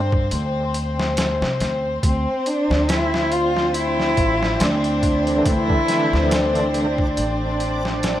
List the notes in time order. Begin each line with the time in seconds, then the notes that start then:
Already playing: G2 C4 C5
0.12 kick
0.31 D2, closed hi-hat
0.74 closed hi-hat
0.99 snare
1.17 snare, closed hi-hat
1.42 C3, snare
1.60 D2, snare, closed hi-hat
2.03 D2 C4 D4 C5 D5, kick, closed hi-hat
2.46 D4, closed hi-hat
2.70 D2, snare
2.89 E4, snare, closed hi-hat
3.14 snare
3.32 F4, closed hi-hat
3.56 snare
3.74 E4, closed hi-hat
4.00 snare
4.17 A1, kick, closed hi-hat
4.43 snare
4.60 D2 D4, snare, closed hi-hat
4.84 closed hi-hat
5.03 kick, closed hi-hat
5.25 D3 E3 A3, closed hi-hat
5.30 D4
5.46 D2 E4, kick, closed hi-hat
5.70 kick
5.88 snare, closed hi-hat
6.13 D2, snare
6.31 D4, snare, closed hi-hat
6.55 closed hi-hat
6.74 D3 E3 A3 D4, closed hi-hat
6.98 kick
7.17 A1, closed hi-hat
7.60 closed hi-hat
7.85 snare
8.03 snare, closed hi-hat